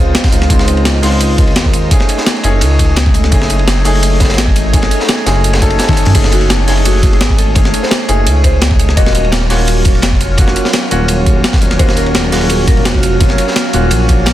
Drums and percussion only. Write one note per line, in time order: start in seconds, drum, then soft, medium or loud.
0.15 snare loud
0.15 closed hi-hat medium
0.15 ride medium
0.24 kick loud
0.24 snare loud
0.24 ride medium
0.32 closed hi-hat medium
0.42 snare soft
0.42 ride medium
0.50 kick loud
0.50 closed hi-hat medium
0.50 ride medium
0.59 snare medium
0.59 snare soft
0.68 closed hi-hat medium
0.68 ride medium
0.77 ride soft
0.85 snare loud
0.85 closed hi-hat medium
0.85 ride medium
1.02 snare medium
1.02 closed hi-hat medium
1.02 open hi-hat medium
1.12 ride soft
1.20 closed hi-hat medium
1.20 ride medium
1.38 kick loud
1.38 closed hi-hat medium
1.38 ride medium
1.47 ride soft
1.56 snare loud
1.56 closed hi-hat medium
1.56 ride medium
1.65 kick medium
1.73 closed hi-hat medium
1.73 ride medium
1.91 kick loud
1.91 closed hi-hat medium
1.91 ride loud
2.00 snare soft
2.00 ride soft
2.09 closed hi-hat medium
2.09 ride medium
2.18 snare medium
2.27 snare loud
2.27 closed hi-hat medium
2.27 ride medium
2.36 ride soft
2.43 closed hi-hat medium
2.43 ride medium
2.61 closed hi-hat medium
2.61 ride loud
2.79 kick medium
2.79 closed hi-hat medium
2.79 ride medium
2.96 snare loud
2.96 closed hi-hat medium
2.96 ride medium
3.06 kick loud
3.14 closed hi-hat medium
3.14 ride medium
3.24 snare soft
3.32 kick loud
3.32 closed hi-hat medium
3.32 ride medium
3.42 snare soft
3.50 closed hi-hat medium
3.50 ride medium
3.59 ride soft
3.67 snare loud
3.67 closed hi-hat loud
3.67 ride medium
3.85 closed hi-hat medium
3.85 open hi-hat medium
3.95 ride soft
4.03 closed hi-hat loud
4.03 ride medium
4.20 kick loud
4.20 snare medium
4.20 closed hi-hat medium
4.20 ride medium
4.24 snare medium
4.24 ride medium
4.30 snare loud
4.30 ride medium
4.34 snare medium
4.34 ride medium
4.37 snare loud
4.37 closed hi-hat loud
4.37 ride medium
4.47 kick medium
4.56 closed hi-hat medium
4.56 ride medium
4.74 kick loud
4.74 closed hi-hat loud
4.74 ride medium
4.82 snare soft
4.82 ride soft
4.91 closed hi-hat medium
4.91 ride medium
5.00 snare medium
5.08 snare loud
5.08 closed hi-hat loud
5.08 ride medium
5.18 ride soft
5.26 snare loud
5.26 closed hi-hat medium
5.26 ride medium
5.44 closed hi-hat loud
5.44 ride medium
5.53 snare loud
5.53 ride medium
5.62 kick medium
5.62 closed hi-hat medium
5.70 ride medium
5.79 snare medium
5.79 closed hi-hat loud
5.79 ride medium
5.84 snare medium
5.84 ride medium
5.88 kick loud
5.88 snare medium
5.88 high tom medium
5.88 ride medium
5.93 snare medium
5.93 ride medium
5.97 closed hi-hat medium
5.97 ride medium
6.05 snare soft
6.05 mid tom medium
6.05 open hi-hat medium
6.15 kick loud
6.15 closed hi-hat loud
6.15 crash medium
6.15 ride medium
6.24 snare soft
6.32 closed hi-hat medium
6.32 ride medium
6.41 ride soft
6.50 snare loud
6.50 closed hi-hat loud
6.50 ride medium
6.68 snare medium
6.68 closed hi-hat medium
6.68 open hi-hat medium
6.77 ride soft
6.85 closed hi-hat loud
6.85 ride medium
7.03 kick loud
7.03 closed hi-hat medium
7.03 ride medium
7.13 ride soft
7.21 snare loud
7.21 closed hi-hat loud
7.21 ride medium
7.30 kick medium
7.38 closed hi-hat medium
7.38 ride medium
7.55 kick loud
7.55 closed hi-hat medium
7.55 ride medium
7.65 snare soft
7.65 ride soft
7.74 closed hi-hat medium
7.74 ride medium
7.83 snare medium
7.91 snare loud
7.91 closed hi-hat loud
7.91 ride medium
8.00 ride soft
8.08 closed hi-hat medium
8.08 ride medium
8.27 closed hi-hat medium
8.27 ride medium
8.44 kick medium
8.44 closed hi-hat medium
8.44 ride medium
8.61 snare loud
8.61 closed hi-hat loud
8.61 ride loud
8.71 kick loud
8.79 closed hi-hat medium
8.79 ride medium
8.89 snare soft
8.97 kick loud
8.97 closed hi-hat medium
8.97 ride medium
9.06 snare medium
9.06 snare soft
9.15 closed hi-hat medium
9.15 ride medium
9.24 ride soft
9.32 snare loud
9.32 closed hi-hat medium
9.32 ride medium
9.50 snare medium
9.50 closed hi-hat medium
9.50 open hi-hat medium
9.59 ride soft
9.68 closed hi-hat medium
9.68 ride medium
9.85 kick loud
9.85 closed hi-hat medium
9.85 ride medium
9.95 ride soft
10.02 snare loud
10.02 closed hi-hat medium
10.02 ride medium
10.12 kick medium
10.20 closed hi-hat medium
10.20 ride medium
10.38 kick loud
10.38 closed hi-hat medium
10.38 ride medium
10.48 snare soft
10.48 ride soft
10.56 closed hi-hat medium
10.56 ride medium
10.65 snare medium
10.65 snare soft
10.73 snare loud
10.73 closed hi-hat medium
10.73 ride loud
10.82 ride soft
10.91 closed hi-hat medium
10.91 ride medium
11.08 closed hi-hat medium
11.08 ride medium
11.26 kick medium
11.26 closed hi-hat medium
11.44 snare loud
11.44 closed hi-hat medium
11.44 ride medium
11.53 kick loud
11.53 snare loud
11.53 ride medium
11.62 closed hi-hat medium
11.71 snare soft
11.71 ride medium
11.79 kick loud
11.79 closed hi-hat medium
11.79 ride medium
11.89 snare soft
11.96 closed hi-hat medium
11.96 ride medium
12.06 ride soft
12.15 snare loud
12.15 closed hi-hat medium
12.15 ride medium
12.32 snare medium
12.32 closed hi-hat medium
12.32 open hi-hat medium
12.41 ride soft
12.49 closed hi-hat medium
12.49 ride loud
12.67 kick loud
12.67 closed hi-hat medium
12.67 ride medium
12.77 ride soft
12.85 snare loud
12.85 closed hi-hat medium
12.85 ride loud
12.95 kick medium
13.03 closed hi-hat medium
13.03 ride medium
13.20 kick loud
13.20 closed hi-hat medium
13.20 ride medium
13.29 snare soft
13.29 ride soft
13.38 closed hi-hat medium
13.38 ride medium
13.48 snare medium
13.56 snare loud
13.56 closed hi-hat medium
13.56 ride medium
13.64 ride soft
13.73 closed hi-hat medium
13.73 ride medium
13.91 closed hi-hat medium
13.91 ride medium
14.09 kick medium
14.09 closed hi-hat medium
14.09 ride medium
14.26 snare loud
14.26 closed hi-hat medium
14.26 ride loud